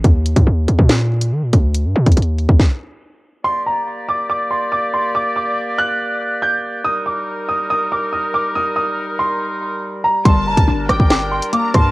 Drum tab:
HH |x---x-x-----x---x-----x-----x---|x-----xxxx--x-------------------|--------------------------------|--------------------------------|
SD |----------------o---------------|----------------o---------------|--------------------------------|--------------------------------|
BD |o-----o-------o-------------o---|------o-------o-o---------------|--------------------------------|--------------------------------|

HH |--------------------------------|--------------------------------|x-----x-----x---x-----x-x---x---|
SD |--------------------------------|--------------------------------|------------r---o-----------r---|
BD |--------------------------------|--------------------------------|o-----o-------o-------------o---|